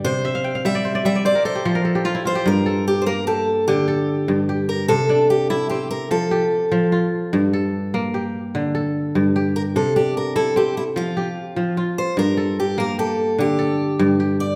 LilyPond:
<<
  \new Staff \with { instrumentName = "Steel-string acoustic guitar" } { \time 12/8 \key g \dorian \tempo 4. = 99 << { c''4. e''4 e''8 d''8 c''2~ c''8 | r1. | r1. | r1. |
r1. | r1. | } \\ { r1 r4. c''8 | bes'4 g'16. c''32 bes'8 a'4 g'2~ g'8 bes'8 | a'4 g'8 e'8 g'8 bes'8 a'2 r4 | r1 r4. bes'8 |
a'8 g'8 bes'8 a'8 g'8 e'8 f'2~ f'8 c''8 | bes'4 g'8 bes'8 a'4 g'2~ g'8 d''8 | } >> }
  \new Staff \with { instrumentName = "Kora" } { \time 12/8 \key g \dorian r8 e''16 f''16 g''16 f''16 e''16 d''16 c''16 d''16 e''16 d''16 c''16 bes'16 a'16 g'16 a'16 bes'16 a'16 g'16 f'16 e'16 f'16 g'16~ | g'16 r16 a'4. g'4. a'4. g'4~ | g'8 d'4. c'4. g'4. f'4~ | f'8 a'4. g'4. a'4. g'4~ |
g'8 d'4. c'4. g'4. f'4~ | f'8 a'4. g'4. a'4. g'4 | }
  \new Staff \with { instrumentName = "Kora" } { \clef bass \time 12/8 \key g \dorian c4 r8 g4 g8 r4 f4 f'4 | g,4 r8 bes4 r8 d4 r8 g,4 r8 | c4 r8 e'4 r8 f4 r8 f4 r8 | g,4 r8 bes4 r8 d4 r8 g,4 r8 |
c4 r8 e'4 r8 f4 r8 f4 r8 | g,4 r8 bes4 r8 d4 r8 g,4 r8 | }
>>